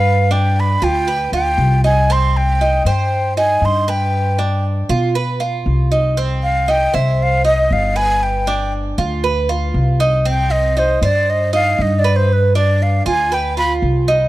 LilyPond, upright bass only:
\new Staff \with { instrumentName = "Upright bass" } { \clef bass \time 4/4 \key c \minor \tempo 4 = 118 g,4. d,4 d,8 c,4~ | c,4. g,4. g,4~ | g,4. b,4. c,4~ | c,4. c,4. g,,4~ |
g,,4. d,4. c,4~ | c,4. g,4. g,4~ | g,4. d,4. c,4 | }